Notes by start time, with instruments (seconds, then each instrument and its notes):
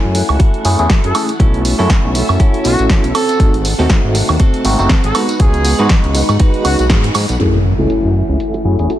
Already playing: tine electric piano A3 C#4 E4 G#5, string machine E4 A4 F#5
0.04 analog synth bass F#2, muted clean electric guitar stroke
0.15 muted clean electric guitar stroke, open hi-hat, tambourine
0.29 analog synth bass C#2, muted clean electric guitar stroke, tambourine, high woodblock
0.39 clean electric guitar E4 F#4 A4, kick, closed hi-hat
0.54 closed hi-hat
0.65 analog synth bass F#2, tine electric piano A3 C#4 E4 G#4, open hi-hat, tambourine
0.79 analog synth bass E2, tine electric piano A3 C#4 E4 G#4, closed hi-hat, tambourine
0.90 clean electric guitar E4 F#4 A4, kick, snare, closed hi-hat
1.04 analog synth bass F#2, trumpet section A4, closed hi-hat
1.14 tine electric piano A3 C#4 E4 G#4, open hi-hat, tambourine, high woodblock
1.29 closed hi-hat, tambourine
1.40 analog synth bass B1, tine electric piano A3 C#4 E4 F#4, clean electric guitar C#4 E4 A4, string machine C#4 E5, kick, closed hi-hat
1.54 closed hi-hat
1.65 open hi-hat, tambourine
1.78 analog synth bass F#2, tine electric piano A3 C#4 E4 F#4, clean electric guitar C#4 E4 A4, tambourine
1.90 kick, snare, closed hi-hat
2.04 analog synth bass B1, muted clean electric guitar stroke
2.15 muted clean electric guitar stroke, open hi-hat, tambourine
2.29 analog synth bass F#2, muted clean electric guitar stroke, tambourine, high woodblock
2.40 tine electric piano A3 C#4 E4 F#4, clean electric guitar C#4 E4 A4, kick, closed hi-hat, tambourine
2.54 closed hi-hat
2.64 analog synth bass B1, trumpet section F#4, open hi-hat, tambourine
2.79 analog synth bass A1, closed hi-hat, tambourine
2.90 tine electric piano A3 C#4 E4 F#4, clean electric guitar C#4 E4 A4, kick, snare, closed hi-hat
3.04 analog synth bass B1, closed hi-hat
3.15 string machine C4 F#5, clean electric guitar C4 F#4 A4, trumpet section A4, open hi-hat, tambourine, high woodblock
3.29 closed hi-hat, tambourine
3.40 analog synth bass G#1, tine electric piano A3 C4 D#4 F#4, kick, closed hi-hat, tambourine
3.54 closed hi-hat
3.65 open hi-hat, tambourine
3.78 analog synth bass D#2, tine electric piano A3 C4 D#4 F#4, clean electric guitar C4 F#4 A4, tambourine
3.90 kick, snare, closed hi-hat
4.04 analog synth bass G#1, muted clean electric guitar stroke
4.15 muted clean electric guitar stroke, open hi-hat, tambourine
4.28 analog synth bass D#2, muted clean electric guitar stroke, tambourine, high woodblock
4.40 clean electric guitar C4 F#4 A4, kick, closed hi-hat, tambourine
4.54 closed hi-hat
4.64 analog synth bass G#1, tine electric piano A3 C4 D#4 F#4, open hi-hat, tambourine
4.78 analog synth bass F#1, tine electric piano A3 C4 D#4 F#4, closed hi-hat, tambourine
4.89 clean electric guitar C4 F#4 A4, kick, snare, closed hi-hat
5.04 analog synth bass G#1, trumpet section A4, closed hi-hat
5.15 tine electric piano G#3 B3 D#4 F#4, string machine D#4 B4, clean electric guitar D#4 F#4 B4, open hi-hat, tambourine, high woodblock
5.29 closed hi-hat, tambourine
5.39 analog synth bass C#2, tine electric piano G#3 B3 D#4 F#4, trumpet section G#4, kick, closed hi-hat
5.54 closed hi-hat
5.65 open hi-hat, tambourine
5.78 analog synth bass G#2, tine electric piano G#3 B3 D#4 F#4, clean electric guitar D#4 F#4 B4, closed hi-hat, tambourine
5.89 kick, snare, closed hi-hat
6.04 analog synth bass C#2, muted clean electric guitar stroke, closed hi-hat
6.15 muted clean electric guitar stroke, open hi-hat, tambourine
6.29 analog synth bass G#2, muted clean electric guitar stroke, closed hi-hat, tambourine, high woodblock
6.39 tine electric piano G#3 B3 D#4 F#4, clean electric guitar D#4 F#4 B4, kick, closed hi-hat, tambourine
6.54 closed hi-hat
6.65 analog synth bass C#2, trumpet section F#4, open hi-hat, tambourine, high woodblock
6.79 analog synth bass B1, trumpet section F#4, closed hi-hat, tambourine
6.89 analog synth bass G#2, tine electric piano G#3 B3 D#4 F#4, clean electric guitar D#4 F#4 G#4, kick, snare, closed hi-hat, tambourine
7.04 closed hi-hat
7.14 analog synth bass G#2, open hi-hat, tambourine, high woodblock
7.29 analog synth bass B1, closed hi-hat, tambourine
7.39 analog synth bass F#2, tine electric piano A3 C#4 E4 G#4, string machine E4 A4 F#5, muted clean electric guitar stroke, closed hi-hat, impact
7.54 closed hi-hat
7.65 muted clean electric guitar stroke
7.78 analog synth bass C#2, tine electric piano A3 C#4 E4 G#5, clean electric guitar E4 F#4 A4
7.90 closed hi-hat
8.04 analog synth bass F#2
8.29 analog synth bass C#2
8.40 muted clean electric guitar stroke, closed hi-hat
8.54 muted clean electric guitar stroke, closed hi-hat
8.64 analog synth bass F#2, tine electric piano A3 C#4 E4 G#4, muted clean electric guitar stroke
8.79 analog synth bass E2, tine electric piano A3 C#4 E4 G#4, closed hi-hat
8.90 clean electric guitar E4 F#4 A4, closed hi-hat